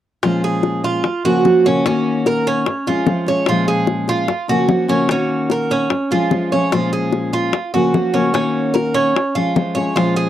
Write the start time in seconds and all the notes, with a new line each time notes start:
0.23 A#2 F3 G#3 C#4 F4, high bongo
0.44 G#4
0.63 high bongo
0.84 F4, high bongo
1.04 muted steel-string acoustic guitar stroke, high bongo
1.24 C#3 F3 A#3 C#4 F#4, high bongo
1.45 F3 A#3 C#4 F#4, high bongo, low bongo
1.64 C#3 F3 A#3 C#4 F#4, high bongo
1.86 D#3 A#3 C#4 F#4, high bongo
2.26 A#4, high bongo
2.47 C#4, high bongo
2.66 muted steel-string acoustic guitar stroke, high bongo
2.87 F3 G#3 C#4 F4, high bongo
3.06 F3 G#3 C#4 F4, high bongo, low bongo
3.27 F3 G#3 C#4 F4 C#5, high bongo
3.46 A#2 F3 G#3 F4, high bongo
3.50 C#4 F4
3.68 G#4
3.87 high bongo
4.08 F4, high bongo
4.28 muted steel-string acoustic guitar stroke, high bongo
4.48 C#3 F3 A#3 C#4 F#4, high bongo
4.68 F3 A#3 C#4 F#4, high bongo, low bongo
4.88 C#3 F3 A#3 C#4 F#4, high bongo
5.08 D#3 A#3 C#4 F#4, high bongo
5.50 A#4, high bongo
5.70 C#4, high bongo
5.90 muted steel-string acoustic guitar stroke, high bongo
6.11 F3 G#3 C#4 F4, high bongo
6.31 F3 G#3 C#4 F4, high bongo, low bongo
6.52 F3 G#3 C#4 F4 C#5, high bongo
6.72 A#2 F3 G#3 C#4 F4, high bongo
6.93 G#4
7.13 high bongo
7.33 F4, high bongo
7.53 muted steel-string acoustic guitar stroke, high bongo
7.74 C#3 F3 A#3 C#4 F#4, high bongo
7.94 F3 A#3 C#4, high bongo, low bongo
8.14 C#3 F3 A#3 C#4 F#4, high bongo
8.33 D#3 A#3 C#4 F#4, high bongo
8.74 A#4, high bongo
8.94 C#4, high bongo
9.15 muted steel-string acoustic guitar stroke, high bongo
9.35 F3 G#3 C#4 F4, high bongo
9.55 F3 G#3 C#4 F4, high bongo, low bongo
9.75 F3 G#3 C#4 F4 C#5, high bongo
9.95 A#2 F3 G#3 C#4 F4, high bongo
10.16 G#4